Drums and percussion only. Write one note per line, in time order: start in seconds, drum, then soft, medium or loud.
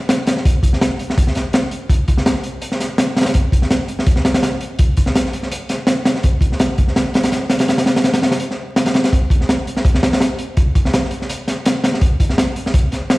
0.09 snare loud
0.09 closed hi-hat medium
0.27 snare loud
0.27 closed hi-hat medium
0.37 snare medium
0.45 kick loud
0.45 closed hi-hat medium
0.63 kick medium
0.63 closed hi-hat medium
0.73 snare soft
0.81 snare loud
0.81 closed hi-hat medium
0.99 closed hi-hat medium
1.10 snare medium
1.18 kick loud
1.18 closed hi-hat medium
1.27 snare soft
1.35 snare soft
1.35 closed hi-hat medium
1.53 snare loud
1.53 closed hi-hat medium
1.71 closed hi-hat medium
1.89 kick loud
1.89 closed hi-hat medium
2.08 kick loud
2.08 closed hi-hat medium
2.17 snare medium
2.26 snare loud
2.26 closed hi-hat medium
2.36 snare soft
2.44 closed hi-hat medium
2.62 closed hi-hat medium
2.72 snare soft
2.80 snare soft
2.80 closed hi-hat medium
2.98 snare loud
2.98 closed hi-hat loud
3.16 snare medium
3.16 closed hi-hat medium
3.21 snare medium
3.21 closed hi-hat medium
3.25 snare loud
3.25 closed hi-hat medium
3.34 kick medium
3.34 closed hi-hat medium
3.52 kick loud
3.52 closed hi-hat medium
3.62 snare soft
3.70 snare loud
3.70 closed hi-hat medium
3.88 closed hi-hat medium
3.99 snare medium
4.06 kick loud
4.06 closed hi-hat medium
4.16 snare medium
4.25 snare loud
4.25 closed hi-hat medium
4.34 snare loud
4.34 closed hi-hat medium
4.43 snare loud
4.43 closed hi-hat loud
4.61 closed hi-hat medium
4.79 kick loud
4.79 closed hi-hat medium
4.97 kick medium
4.97 closed hi-hat medium
5.06 snare medium
5.15 snare loud
5.15 closed hi-hat medium
5.26 snare soft
5.33 closed hi-hat medium
5.43 snare soft
5.52 closed hi-hat medium
5.69 snare soft
5.69 closed hi-hat medium
5.87 snare loud
5.87 closed hi-hat loud
6.05 snare loud
6.05 closed hi-hat medium
6.16 snare medium
6.23 kick loud
6.23 closed hi-hat medium
6.41 kick loud
6.41 closed hi-hat medium
6.52 snare soft
6.60 snare loud
6.60 closed hi-hat medium
6.78 kick medium
6.78 closed hi-hat medium
6.88 snare soft
6.96 snare loud
6.96 closed hi-hat medium
7.14 snare loud
7.14 closed hi-hat medium
7.23 snare loud
7.23 closed hi-hat medium
7.32 snare loud
7.32 closed hi-hat medium
7.50 snare loud
7.50 closed hi-hat medium
7.59 snare loud
7.59 closed hi-hat medium
7.68 snare loud
7.68 closed hi-hat medium
7.78 snare loud
7.78 closed hi-hat medium
7.86 snare loud
7.86 closed hi-hat medium
7.96 snare loud
7.96 closed hi-hat medium
8.04 snare loud
8.04 closed hi-hat medium
8.13 snare loud
8.13 closed hi-hat medium
8.23 snare loud
8.23 closed hi-hat medium
8.32 snare loud
8.32 closed hi-hat medium
8.40 closed hi-hat medium
8.51 snare soft
8.76 snare loud
8.76 closed hi-hat medium
8.86 snare loud
8.86 closed hi-hat medium
8.94 snare loud
8.94 closed hi-hat medium
9.04 snare loud
9.04 closed hi-hat medium
9.13 kick loud
9.13 closed hi-hat medium
9.30 kick loud
9.30 closed hi-hat medium
9.41 snare soft
9.49 snare loud
9.49 closed hi-hat medium
9.67 closed hi-hat medium
9.77 snare medium
9.85 kick loud
9.85 closed hi-hat medium
9.95 snare medium
10.03 snare loud
10.03 closed hi-hat medium
10.13 snare loud
10.13 closed hi-hat medium
10.21 snare loud
10.21 closed hi-hat loud
10.39 closed hi-hat medium
10.57 kick loud
10.57 closed hi-hat medium
10.75 kick loud
10.75 closed hi-hat medium
10.85 snare medium
10.93 snare loud
10.93 closed hi-hat medium
11.04 snare soft
11.11 closed hi-hat medium
11.22 snare soft
11.29 closed hi-hat loud
11.48 snare soft
11.48 closed hi-hat medium
11.66 snare loud
11.66 closed hi-hat loud
11.84 snare loud
11.84 closed hi-hat medium
11.94 snare medium
12.01 kick loud
12.01 closed hi-hat medium
12.20 kick loud
12.20 closed hi-hat medium
12.29 snare soft
12.38 snare loud
12.38 closed hi-hat medium
12.56 closed hi-hat medium
12.66 snare medium
12.74 kick loud
12.74 closed hi-hat medium
12.92 snare soft
12.92 closed hi-hat medium
13.10 snare loud
13.10 closed hi-hat loud